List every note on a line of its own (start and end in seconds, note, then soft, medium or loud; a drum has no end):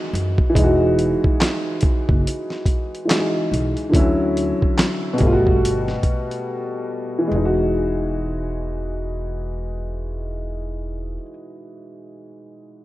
0.00 0.48 E3 medium
0.00 0.51 G#3 medium
0.00 0.53 D#4 medium
0.00 0.55 F#4 medium
0.13 0.35 F#2 loud
0.13 closed hi-hat medium
0.38 kick medium
0.50 3.02 E3 medium
0.55 1.13 E1 loud
0.55 3.05 G#3 medium
0.55 3.06 D#4 medium
0.55 kick loud
0.55 closed hi-hat medium
0.64 3.09 F#4 medium
0.99 closed hi-hat medium
1.24 kick medium
1.41 snare medium
1.41 clap medium
1.41 closed hi-hat medium
1.81 kick loud
1.81 closed hi-hat medium
2.09 2.23 F#1 medium
2.09 kick medium
2.27 closed hi-hat medium
2.50 snare soft
2.66 kick medium
2.66 closed hi-hat medium
2.95 closed hi-hat soft
3.05 3.90 E3 soft
3.05 3.93 G#3 soft
3.10 3.94 D#4 medium
3.10 3.18 F#4 soft
3.10 snare medium
3.10 clap medium
3.10 closed hi-hat medium
3.18 3.98 G#4 medium
3.52 3.73 B1 medium
3.52 closed hi-hat medium
3.77 closed hi-hat soft
3.89 5.18 D3 medium
3.89 4.00 E3 medium
3.94 4.51 D2 loud
3.94 5.20 C#4 medium
3.94 5.21 E4 medium
3.94 kick loud
3.94 closed hi-hat medium
3.98 5.22 F#3 medium
4.37 closed hi-hat medium
4.62 kick medium
4.78 snare medium
4.78 clap medium
4.78 closed hi-hat medium
5.13 7.24 B2 medium
5.18 5.92 G1 medium
5.18 7.26 G3 medium
5.18 kick medium
5.18 closed hi-hat medium
5.22 7.28 A3 medium
5.27 5.31 F4 medium
5.33 7.34 F#4 medium
5.47 kick medium
5.65 closed hi-hat medium
5.88 snare soft
6.03 kick medium
6.03 closed hi-hat medium
6.31 closed hi-hat soft
7.19 11.03 E3 medium
7.28 11.16 E1 medium
7.28 11.12 G#3 medium
7.36 11.21 D#4 medium
7.45 11.30 F#4 medium